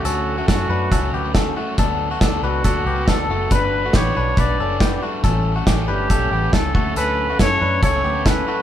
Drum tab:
HH |x-x-x-x-|x-x-x-x-|x-x-x-x-|x-x-x-x-|
SD |--o---o-|--o---o-|--o---o-|--o---o-|
BD |--o-o-o-|o-o-o-o-|o-o-o-o-|o-o-o-oo|

HH |x-x-x-x-|
SD |--o---o-|
BD |--o-o-o-|